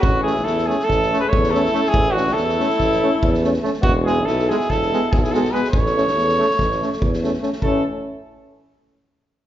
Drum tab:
SD |--ooooooooo--ooooo|--oooooooo---ooooo|--o-ooooooo--ooooo|-ooooooooooo-ooooo|
BD |o-------o---o-----|o-------o---o-----|o-------o---o-----|o-------o---o-----|

SD |------------------|
BD |o-----------------|